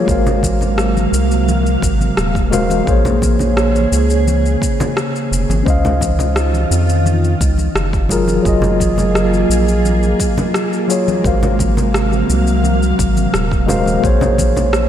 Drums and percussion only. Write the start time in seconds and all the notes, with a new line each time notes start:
0.08 kick, shaker
0.27 low conga, shaker
0.43 kick, high conga, shaker
0.61 low conga, shaker
0.78 cross-stick, shaker
0.97 high conga, shaker
1.14 shaker
1.31 shaker
1.48 high conga, shaker
1.66 shaker
1.82 kick, shaker
2.01 high conga, shaker
2.17 cross-stick, shaker
2.35 kick, shaker
2.52 low conga, shaker
2.70 high conga, shaker
2.87 kick, shaker
3.05 low conga, shaker
3.22 kick, high conga, shaker
3.39 low conga, shaker
3.57 cross-stick, shaker
3.75 high conga, shaker
3.93 shaker
4.10 shaker
4.27 high conga, shaker
4.46 shaker
4.62 kick, shaker
4.80 high conga, low conga, shaker
4.97 cross-stick, shaker
5.16 shaker
5.33 shaker
5.50 high conga, shaker
5.66 kick, shaker
5.85 low conga, shaker
6.01 kick, high conga, shaker
6.19 low conga, shaker
6.36 cross-stick, shaker
6.54 high conga, shaker
6.72 shaker
6.89 shaker
7.06 high conga, shaker
7.24 shaker
7.41 kick, shaker
7.58 high conga, shaker
7.76 cross-stick, shaker
7.93 kick, shaker
8.09 low conga, shaker
8.28 high conga, shaker
8.45 kick, shaker
8.62 low conga, shaker
8.80 kick, high conga, shaker
8.98 low conga, shaker
9.15 cross-stick, shaker
9.33 high conga, shaker
9.51 shaker
9.68 shaker
9.85 high conga, shaker
10.03 shaker
10.20 kick, shaker
10.38 high conga, low conga, shaker
10.54 cross-stick, shaker
10.73 shaker
10.90 shaker
11.08 high conga, shaker
11.24 kick, shaker
11.43 low conga, shaker
11.59 kick, high conga, shaker
11.77 low conga, shaker
11.94 cross-stick, shaker
12.12 high conga, shaker
12.30 shaker
12.47 shaker
12.64 high conga, shaker
12.83 shaker
12.99 kick, shaker
13.17 high conga, shaker
13.34 cross-stick, shaker
13.52 kick, shaker
13.69 low conga, shaker
13.86 high conga, shaker
14.04 kick, shaker
14.21 low conga, shaker
14.38 kick, high conga, shaker
14.56 low conga, shaker
14.73 cross-stick, shaker